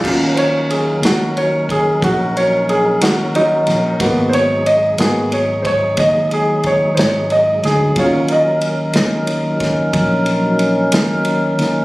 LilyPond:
<<
  \new Staff \with { instrumentName = "Grand piano" } { \time 12/8 \key ees \minor \tempo 4. = 61 << { r8 <c'' des''>8 aes'8 ges'8 des''8 aes'8 ges'8 des''8 aes'8 ges'8 <ges ees'>4 | r8 <c'' des''>8 ees''8 aes'8 des''8 <c'' des''>8 ees''8 aes'8 des''8 <c'' des''>8 ees''8 aes'8 | des''8 ees''2. r2 r8 | } \\ { <ges des' f'>4. r1 r8 | <bes ces' ges'>8 r4 <bes ces' ges'>8 r1 | <ges des' f'>8 r1 r4. | } >> }
  \new Staff \with { instrumentName = "Tonewheel organ" } { \time 12/8 \key ees \minor << { d''8 r1 r4. | r1. | r1. | } \\ { <ges des' ees' bes'>1. | <ges aes ees' aes'>1. | <ges des' ees' bes'>1. | } >> }
  \new Staff \with { instrumentName = "Fingered electric bass" } { \clef bass \time 12/8 \key ees \minor ees,4. ees,4. bes,,4. ees,4 bes,,8 | aes,,4. aes,,4. ees,4. aes,,4 d,8 | ees,4. ees,4. bes,,4. ees,4 ees,8 | }
  \new DrumStaff \with { instrumentName = "Drums" } \drummode { \time 12/8 <cymc bd>8 cymr8 cymr8 <cymr sn>8 cymr8 <bd cymr>8 <bd cymr>8 cymr8 cymr8 <cymr sn>8 cymr8 <cymr sn>8 | <bd cymr>8 cymr8 cymr8 <cymr sn>8 cymr8 <bd cymr>8 <bd cymr>8 cymr8 <bd cymr>8 <cymr sn>8 cymr8 <cymr sn>8 | <bd cymr>8 cymr8 cymr8 <cymr sn>8 cymr8 <bd cymr sn>8 <bd cymr>8 cymr8 cymr8 <cymr sn>8 cymr8 <cymr sn>8 | }
>>